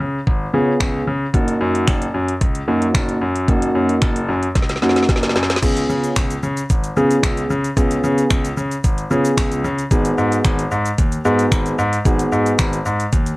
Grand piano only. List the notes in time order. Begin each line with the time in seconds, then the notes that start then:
0.00 C#3
0.27 G#1
0.54 C#3
0.80 C#2
1.07 C#3
1.34 F#1
1.61 F#2
1.88 F#1
2.14 F#2
2.41 C#2
2.68 F#2
2.95 F#1
3.22 F#2
3.48 F#1
3.75 F#2
4.02 F#1
4.29 F#2
4.56 C#2
4.82 F#2
5.09 F#1
5.36 F#2
5.62 C#2
5.89 C#3
6.16 C#2
6.43 C#3
6.70 G#1
6.97 C#3
7.23 C#2
7.50 C#3
7.77 C#2
8.04 C#3
8.31 C#2
8.57 C#3
8.84 G#1
9.11 C#3
9.37 C#2
9.64 C#3
9.91 G#1
10.18 G#2
10.45 G#1
10.71 G#2
10.99 D#2
11.25 G#2
11.52 G#1
11.78 G#2
12.05 G#1
12.32 G#2
12.59 G#1
12.86 G#2
13.13 D#2